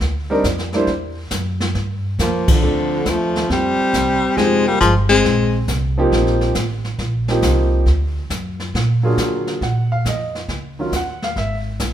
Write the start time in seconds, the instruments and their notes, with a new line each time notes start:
0.00 upright bass D2, brush sweep, kick, snare
0.30 upright piano G3 C4 D4 D#4 A#4
0.44 upright bass F2, kick, snare, hi-hat pedal
0.58 snare
0.73 upright piano G3 A#3 D4 E4 C5, snare
0.87 upright bass E2, brush sweep, kick, snare
1.31 upright bass F#2, kick, snare, hi-hat pedal
1.60 snare
1.75 upright bass G2, brush sweep, kick, snare
2.19 upright bass F2, baritone saxophone F3, alto saxophone A#3, kick, snare, hi-hat pedal
2.48 baritone saxophone D3, alto saxophone F3, kick, crash
2.62 upright bass D2, upright piano F3 A3 C4 D4 A4, brush sweep
3.06 upright bass D#2, alto saxophone A3, kick, snare, hi-hat pedal
3.10 baritone saxophone F3
3.36 snare
3.49 upright bass F2, baritone saxophone G3, alto saxophone C4, brush sweep, kick, snare
3.80 muted upright bass stroke
3.94 upright bass C2, kick, snare, hi-hat pedal
4.23 muted upright bass stroke
4.37 upright bass F1, upright piano F3 G#3 C4 D#4 G4, baritone saxophone G#3, alto saxophone C4, brush sweep, kick, snare
4.67 baritone saxophone G3, alto saxophone A#3
4.81 upright bass G1, baritone saxophone F3, alto saxophone G#3, kick, snare, hi-hat pedal
5.09 baritone saxophone G#3, alto saxophone C4
5.24 upright bass A#1, brush sweep, kick, snare
5.68 upright bass C2, kick, snare, hi-hat pedal
5.98 upright piano F3 A#3 C4 D#4 G4
6.12 upright bass A#1, brush sweep, kick, snare
6.27 snare
6.41 snare
6.55 upright bass A1, kick, snare, hi-hat pedal
6.84 snare
6.99 upright bass A#1, brush sweep, kick, snare
7.28 upright piano F3 A#3 C4 D#4 G4, snare
7.42 upright bass C2, kick, snare, hi-hat pedal
7.86 upright bass D2, brush sweep, kick, snare
8.30 upright bass F#2, kick, snare, hi-hat pedal
8.60 snare
8.74 upright bass A#2, brush sweep, kick, snare
9.03 upright piano F#3 A#3 D4 F4 G#4
9.18 kick, snare, hi-hat pedal
9.47 snare
9.61 upright bass A#2, upright piano F#5, brush sweep, kick, snare
9.92 upright piano F5
10.05 upright bass F2, upright piano D#5, kick, snare, hi-hat pedal
10.35 snare
10.48 upright bass C#2, brush sweep, kick, snare
10.79 upright piano D#3 F#3 C#4 F4
10.92 upright bass D#2, kick, snare, hi-hat pedal
10.96 upright piano F#5
11.22 upright piano F5, snare
11.36 upright bass G#1, upright piano E5, brush sweep, kick, snare
11.79 upright bass B1, kick, snare, hi-hat pedal